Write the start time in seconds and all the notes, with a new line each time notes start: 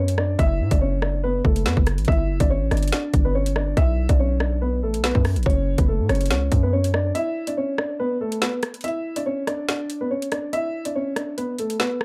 Already playing: F#2 C#4 C#5
0.08 closed hi-hat
0.18 D4 D5, cross-stick
0.39 F#1 E4 E5, kick, closed hi-hat
0.60 A2
0.71 F#1 D4 D5, kick, closed hi-hat
0.81 C#4 C#5
1.02 D4 D5, cross-stick
1.24 B3 B4
1.45 F#1 A3 A4, kick
1.56 closed hi-hat
1.66 F#2 B3 B4, snare, closed hi-hat
1.77 F#1, kick
1.87 cross-stick, closed hi-hat
1.98 A1, closed hi-hat
2.05 G1 E4 E5, kick, closed hi-hat
2.12 closed hi-hat
2.29 F#1
2.40 G1 D4 D5, kick, closed hi-hat
2.50 C#4 C#5
2.61 A1
2.71 G1 D4 D5, cross-stick, closed hi-hat
2.77 closed hi-hat
2.83 closed hi-hat
2.88 closed hi-hat
2.92 D4 D5, snare, closed hi-hat
3.14 G1, kick, closed hi-hat
3.25 B3 B4
3.35 C#4 C#5
3.46 closed hi-hat
3.56 D4 D5, cross-stick
3.77 B1 E4 E5, kick, closed hi-hat
4.09 B1 D4 D5, kick, closed hi-hat
4.20 C#4 C#5
4.40 D4 D5, cross-stick
4.62 B3 B4
4.83 A1 A3 A4
4.94 closed hi-hat
4.99 B1
5.04 B3 B4, snare, closed hi-hat
5.15 F#2, kick
5.25 cross-stick, open hi-hat
5.36 A1, closed hi-hat
5.43 F#1 C#4 C#5, kick, closed hi-hat
5.50 closed hi-hat
5.78 F#1 B3 B4, kick, closed hi-hat
5.88 A3 A4
5.99 A2
6.09 F#1 C#4 C#5, cross-stick, closed hi-hat
6.15 closed hi-hat
6.21 closed hi-hat
6.26 closed hi-hat
6.30 C#2 C#4 C#5, snare, closed hi-hat
6.52 F#2, kick, closed hi-hat
6.63 B3 B4
6.73 C#4 C#5
6.84 closed hi-hat
6.94 D4 D5, cross-stick
7.15 E4 E5, closed hi-hat
7.47 D4 D5, closed hi-hat
7.57 C#4 C#5
7.78 D4 D5, cross-stick
8.00 B3 B4
8.21 A3 A4
8.32 closed hi-hat
8.42 B3 B4, snare, closed hi-hat
8.63 cross-stick, closed hi-hat
8.74 closed hi-hat
8.81 E5, closed hi-hat
8.84 E4, closed hi-hat
8.88 closed hi-hat
9.16 D4 D5, closed hi-hat
9.26 C#4 C#5
9.47 D4 D5, cross-stick, closed hi-hat
9.69 D4 D5, snare, closed hi-hat
9.90 closed hi-hat
10.01 B3 B4
10.11 C#4 C#5
10.22 closed hi-hat
10.32 D4 D5, cross-stick, closed hi-hat
10.53 E4 E5, closed hi-hat
10.85 D4 D5, closed hi-hat
10.95 C#4 C#5
11.16 D4 D5, cross-stick, closed hi-hat
11.38 B3 B4, closed hi-hat
11.59 A3 A4, closed hi-hat
11.70 closed hi-hat
11.80 B3 B4, snare
12.01 cross-stick